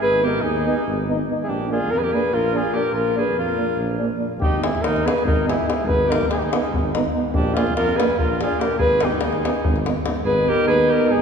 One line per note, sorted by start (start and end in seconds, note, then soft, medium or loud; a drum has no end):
0.02 0.45 G#1 loud
0.02 0.23 G#4 loud
0.02 0.23 B4 loud
0.23 0.31 B3 medium
0.23 0.33 D#4 medium
0.23 0.42 G4 medium
0.23 0.45 A#4 medium
0.41 0.67 D#2 medium
0.41 1.07 D#4 medium
0.41 1.08 G#4 medium
0.66 0.75 B3 medium
0.66 0.74 D#4 medium
0.87 1.20 G#1 loud
1.08 1.16 B3 medium
1.08 1.17 D#4 medium
1.29 1.36 B3 medium
1.29 1.38 D#4 medium
1.43 1.70 D4 medium
1.43 1.49 E4 medium
1.43 1.51 G#4 medium
1.48 1.92 A#1 loud
1.48 1.71 G4 medium
1.70 1.78 A#3 medium
1.70 1.80 D4 medium
1.70 1.93 F4 medium
1.70 1.92 G#4 loud
1.90 2.14 F2 medium
1.90 2.00 F4 medium
1.90 1.99 A#4 loud
1.97 2.05 G#4 medium
1.97 2.03 B4 medium
2.02 2.14 G4 medium
2.02 2.16 A#4 loud
2.12 2.21 A#3 medium
2.12 2.21 D4 medium
2.12 2.35 G#4 medium
2.12 2.37 B4 loud
2.32 2.66 A#1 loud
2.32 2.56 F4 medium
2.32 2.58 A#4 loud
2.54 2.62 A#3 medium
2.54 2.62 D4 medium
2.54 2.75 F4 medium
2.54 2.79 G#4 loud
2.73 2.81 A#3 medium
2.73 2.83 D4 medium
2.73 2.93 G4 medium
2.77 2.95 A#4 loud
2.92 3.36 A#1 loud
2.92 3.15 F4 medium
2.92 3.16 A#4 loud
3.16 3.24 A#3 medium
3.16 3.24 D4 medium
3.16 3.36 G#4 medium
3.20 3.37 B4 loud
3.34 3.58 F2 medium
3.39 3.98 F4 medium
3.39 3.99 A#4 medium
3.57 3.66 A#3 medium
3.57 3.65 D4 soft
3.77 4.11 A#1 loud
3.98 4.08 A#3 medium
3.98 4.07 D4 medium
4.18 4.27 A#3 soft
4.18 4.27 D4 medium
4.37 4.82 G#1 medium
4.37 4.65 G4 loud
4.42 4.66 D#4 medium
4.42 davul low loud
4.61 4.70 B3 medium
4.61 4.69 D#4 medium
4.61 4.86 E4 medium
4.61 4.83 G#4 medium
4.61 davul high medium
4.75 davul high soft
4.81 5.05 D#2 loud
4.81 5.08 D#4 medium
4.81 5.07 A#4 loud
4.81 davul high medium
4.96 davul high soft
5.04 5.13 B3 medium
5.04 5.13 D#4 medium
5.04 5.25 G#4 medium
5.04 5.26 B4 loud
5.04 davul high medium
5.18 davul high soft
5.24 5.58 G#1 loud
5.24 5.46 D#4 medium
5.24 5.46 A#4 medium
5.28 davul low loud
5.45 5.55 B3 medium
5.45 5.53 D#4 medium
5.45 5.66 E4 medium
5.45 5.66 G#4 medium
5.49 davul high medium
5.66 5.75 B3 soft
5.66 5.74 D#4 medium
5.66 5.87 E4 medium
5.66 5.89 G#4 medium
5.70 davul high medium
5.84 6.28 G#1 loud
5.84 6.09 G#4 medium
5.84 6.12 B4 loud
5.89 davul low medium
6.07 6.17 D#4 medium
6.07 6.27 G4 medium
6.07 6.29 A#4 loud
6.11 6.19 B3 medium
6.11 davul high medium
6.21 davul high soft
6.27 6.51 D#2 medium
6.27 6.35 D#4 medium
6.27 6.40 G#4 loud
6.27 davul high medium
6.35 6.44 D#4 medium
6.35 6.46 G4 medium
6.42 6.93 D#4 medium
6.42 6.93 G#4 medium
6.42 davul high soft
6.52 6.61 B3 medium
6.52 6.60 D#4 medium
6.52 davul high medium
6.65 davul high soft
6.71 7.04 G#1 loud
6.71 davul low medium
6.94 7.03 B3 medium
6.94 7.02 D#4 medium
6.94 davul high medium
7.13 7.23 B3 medium
7.13 7.21 D#4 medium
7.32 7.77 A#1 loud
7.32 7.56 D4 medium
7.32 7.59 G4 medium
7.32 davul low loud
7.54 7.65 A#3 medium
7.54 7.64 D4 medium
7.54 7.75 F4 medium
7.54 7.76 G#4 medium
7.54 davul high medium
7.67 davul high soft
7.76 7.99 F2 loud
7.76 7.97 F4 loud
7.76 7.99 A#4 loud
7.76 davul high medium
7.89 davul high soft
7.96 8.07 A#3 medium
7.96 8.07 D4 medium
7.96 8.17 G#4 medium
7.96 8.18 B4 loud
7.96 davul high medium
8.10 davul high soft
8.17 8.50 A#1 medium
8.17 8.38 F4 medium
8.17 8.39 A#4 medium
8.17 davul low medium
8.40 8.48 A#3 medium
8.40 8.50 D4 medium
8.40 8.61 F4 medium
8.40 8.63 G#4 medium
8.40 davul high medium
8.59 8.68 A#3 medium
8.59 8.69 D4 medium
8.59 8.78 G4 medium
8.59 8.80 A#4 loud
8.59 davul high medium
8.77 9.21 G#1 loud
8.77 9.03 G#4 medium
8.77 9.06 B4 loud
8.77 davul low medium
8.91 davul high soft
9.00 9.10 B3 medium
9.00 9.20 D#4 medium
9.00 9.11 D#4 medium
9.00 davul high medium
9.05 9.25 G4 medium
9.11 davul high soft
9.20 9.44 D#2 medium
9.20 9.85 D#4 medium
9.20 9.87 G#4 medium
9.20 davul high medium
9.33 davul high soft
9.45 9.53 B3 medium
9.45 9.54 D#4 medium
9.45 davul high medium
9.64 9.97 G#1 loud
9.64 davul low loud
9.76 davul high soft
9.85 9.94 B3 soft
9.85 9.93 D#4 soft
9.85 davul high medium
10.06 10.15 B3 soft
10.06 10.14 D#4 soft
10.06 davul high medium
10.24 10.48 G#1 loud
10.24 11.22 B3 medium
10.24 11.22 D#4 medium
10.24 10.50 G#4 medium
10.24 10.51 B4 loud
10.48 10.67 G4 loud
10.48 10.68 A#4 loud
10.67 10.91 D#2 loud
10.67 10.91 G#4 loud
10.67 10.94 B4 loud
10.89 11.09 G4 medium
10.89 11.12 A#4 loud
11.08 11.21 G#1 loud
11.08 11.22 D#4 medium
11.08 11.22 G#4 loud